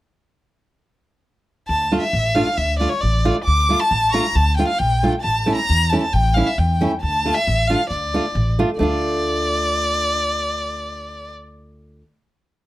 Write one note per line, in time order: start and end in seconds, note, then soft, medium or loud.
1.68 1.96 D2 medium
1.68 2.00 A5 medium
1.92 2.03 A3 medium
1.92 2.03 D4 medium
1.92 2.03 F4 medium
2.01 2.36 E5 medium
2.13 2.40 A1 medium
2.35 2.47 A3 medium
2.35 2.47 D4 medium
2.35 2.47 F4 medium
2.35 2.59 F5 medium
2.57 2.84 D2 medium
2.57 2.78 E5 medium
2.79 2.91 A3 medium
2.79 2.91 D4 medium
2.79 2.91 F4 medium
2.79 2.91 D5 medium
2.90 3.02 C#5 medium
3.01 3.30 A1 medium
3.01 3.35 D5 medium
3.25 3.36 A3 medium
3.25 3.36 D4 medium
3.25 3.36 F4 medium
3.45 3.74 D2 medium
3.45 3.81 D6 medium
3.69 3.80 A3 medium
3.69 3.80 D4 medium
3.69 3.81 F4 medium
3.79 4.11 A5 loud
3.91 4.18 A1 medium
4.10 4.25 A3 medium
4.10 4.37 A#5 medium
4.10 4.14 C#6 medium
4.14 4.25 D4 medium
4.14 4.25 F4 medium
4.35 4.62 D2 medium
4.35 4.56 A5 medium
4.57 4.69 A3 medium
4.57 4.70 D4 medium
4.57 4.70 F4 medium
4.57 4.67 G5 medium
4.68 4.80 F5 medium
4.79 5.07 A#1 medium
4.79 5.13 G5 medium
5.03 5.14 A3 medium
5.03 5.14 D4 medium
5.03 5.14 F4 medium
5.22 5.51 A1 medium
5.22 5.54 A5 medium
5.46 5.58 A3 medium
5.46 5.58 C#4 soft
5.46 5.58 E4 medium
5.55 5.91 A#5 loud
5.70 5.96 E2 medium
5.89 6.03 A3 medium
5.89 6.03 C#4 medium
5.89 6.03 E4 medium
5.89 6.01 A5 medium
6.01 6.14 A5 medium
6.13 6.40 A1 medium
6.13 6.36 G5 loud
6.34 6.47 A3 medium
6.34 6.47 C#4 soft
6.34 6.47 E4 medium
6.34 6.49 F5 medium
6.47 6.60 E5 medium
6.58 6.85 E2 medium
6.58 6.91 G5 medium
6.81 6.91 A3 medium
6.81 6.92 C#4 medium
6.81 6.92 E4 medium
7.02 7.29 D2 medium
7.02 7.36 A5 medium
7.25 7.36 A3 medium
7.25 7.36 D4 medium
7.25 7.36 F4 medium
7.34 7.69 E5 medium
7.47 7.74 A1 medium
7.67 7.80 A3 medium
7.67 7.80 D4 medium
7.67 7.80 F4 medium
7.67 7.90 F5 medium
7.90 8.17 D2 medium
7.90 8.53 D5 medium
8.14 8.24 A3 medium
8.14 8.25 D4 medium
8.14 8.25 F4 medium
8.35 8.61 A1 medium
8.59 8.69 A3 medium
8.59 8.69 D4 medium
8.59 8.69 F4 medium
8.79 12.01 D2 medium
8.79 12.01 A3 medium
8.79 12.01 D4 medium
8.79 12.02 F4 medium
8.79 11.31 D5 medium